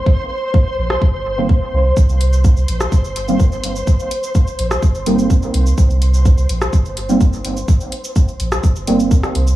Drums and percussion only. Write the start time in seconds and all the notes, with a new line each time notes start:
0.06 kick
0.54 kick
0.90 cross-stick
1.02 kick
1.49 kick
1.97 kick, cabasa
2.09 cabasa
2.21 closed hi-hat
2.33 cabasa
2.45 kick, cabasa
2.57 cabasa
2.68 closed hi-hat
2.81 cross-stick, cabasa
2.92 kick, cabasa
3.04 cabasa
3.16 closed hi-hat
3.28 cabasa
3.40 kick, cabasa
3.52 cabasa
3.64 closed hi-hat
3.76 cabasa
3.87 kick, cabasa
4.00 cabasa
4.11 closed hi-hat
4.23 cabasa
4.35 kick, cabasa
4.47 cabasa
4.59 closed hi-hat
4.71 cross-stick, cabasa
4.83 kick, cabasa
4.95 cabasa
5.06 closed hi-hat
5.19 cabasa
5.30 kick, cabasa
5.42 cabasa
5.54 closed hi-hat
5.66 cabasa
5.78 kick, cabasa
5.90 cabasa
6.02 closed hi-hat
6.14 cabasa
6.25 kick, cabasa
6.38 cabasa
6.49 closed hi-hat
6.62 cross-stick, cabasa
6.73 kick, cabasa
6.85 cabasa
6.97 closed hi-hat
7.09 cabasa
7.21 kick, cabasa
7.33 cabasa
7.45 closed hi-hat
7.57 cabasa
7.68 kick, cabasa
7.81 cabasa
7.92 closed hi-hat
8.04 cabasa
8.16 kick, cabasa
8.28 cabasa
8.40 closed hi-hat
8.52 cross-stick, cabasa
8.64 kick, cabasa
8.76 cabasa
8.87 closed hi-hat
9.00 cabasa
9.11 kick, cabasa
9.23 cross-stick, cabasa
9.35 closed hi-hat
9.47 cabasa